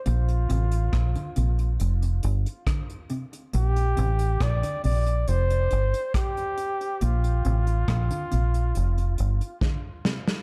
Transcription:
<<
  \new Staff \with { instrumentName = "Flugelhorn" } { \time 4/4 \key bes \major \tempo 4 = 69 f'2 r2 | g'4 d''8 d''8 c''4 g'4 | f'2. r4 | }
  \new Staff \with { instrumentName = "Clean electric guitar" } { \clef bass \time 4/4 \key bes \major bes,16 r16 c16 r16 bes,16 d16 c16 r4 r16 d16 r16 c16 r16 | bes,16 r16 c16 r16 bes,16 d16 c16 r2 r16 | bes,16 r16 c16 r16 bes,16 d16 c16 r4 r16 d16 r16 c16 r16 | }
  \new Staff \with { instrumentName = "Fingered electric bass" } { \clef bass \time 4/4 \key bes \major bes,,8 a,,8 bes,,16 r16 bes,,8 f,,8 g,,16 r4 r16 | bes,,8 a,,8 bes,,16 r16 bes,,8 f,,8 g,,16 r4 r16 | bes,,8 a,,8 bes,,16 r16 bes,,8 f,,8 g,,16 r4 r16 | }
  \new DrumStaff \with { instrumentName = "Drums" } \drummode { \time 4/4 hh16 hh16 hh16 hh16 <hh bd ss>16 hh16 hh16 hh16 hh16 hh16 hh16 hh16 <hh bd ss>16 hh16 hh16 hh16 | hh16 hh16 hh16 hh16 <hh bd ss>16 hh16 hho16 hh16 hh16 hh16 hh16 hh16 <hh bd ss>16 hh16 hh16 hh16 | hh16 hh16 hh16 hh16 <hh bd ss>16 hh16 hh16 hh16 hh16 hh16 hh16 hh16 <bd sn>8 sn16 sn16 | }
>>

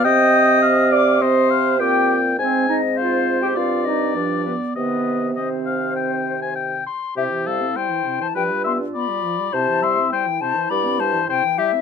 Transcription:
<<
  \new Staff \with { instrumentName = "Flute" } { \time 4/4 \key c \minor \tempo 4 = 102 ees'''4. d'''8 c'''4 g''8. r16 | c''8 ees''8 f''8. g''16 f''8 ees''8 d''8 b'8 | b'4 c''2 r4 | \key c \major e''8 f''8 g''8. a''16 g''8 c'''8 b''4 |
a''8 c'''8 g''8 a''8 b''8 a''8 g''8 e''8 | }
  \new Staff \with { instrumentName = "Oboe" } { \time 4/4 \key c \minor g''4 f''4 ees''8 f''8 g''4 | aes''8 r8 c''4 d''2 | ees''4 ees''8 f''8 g''8. aes''16 g''8 c'''8 | \key c \major g'8 a'8 c''8. c''16 b'8 e''8 d''4 |
c''8 e''8 c''8 c''8 d''8 c''8 c''8 g'8 | }
  \new Staff \with { instrumentName = "Clarinet" } { \time 4/4 \key c \minor ees''4. d''8 c''4 g'8. r16 | c'8 ees'8 f'8. g'16 f'8 ees'8 d'8 b8 | b4 c'2 r4 | \key c \major e'2 f'2 |
e'1 | }
  \new Staff \with { instrumentName = "French horn" } { \clef bass \time 4/4 \key c \minor c'2 c'4 c'4 | c'2 c'4 f8. r16 | ees4 ees2~ ees8 r8 | \key c \major c16 e16 g16 c'16 g16 e16 c16 e16 f16 g16 b16 d'16 b16 g16 f16 g16 |
c16 e16 g16 c'16 g16 e16 c16 e16 g16 c'16 g16 e16 c16 e16 g16 c'16 | }
  \new Staff \with { instrumentName = "Bassoon" } { \clef bass \time 4/4 \key c \minor c2. bes,4 | aes,2 g,4 g,8 r8 | c2.~ c8 r8 | \key c \major c4 r4 g,4 r4 |
c4 r4 g,4 r4 | }
>>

